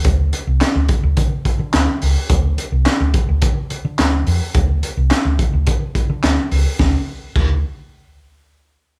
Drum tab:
CC |--------|--------|--------|--x-----|
HH |xxxxxxxo|xxxxxxxo|xxxxxxxo|--------|
CP |--x---x-|--x---x-|--x---x-|--------|
SD |--o---o-|--o---o-|--o---o-|o-------|
BD |o--ooo--|o--oo---|o--ooo--|o-o-----|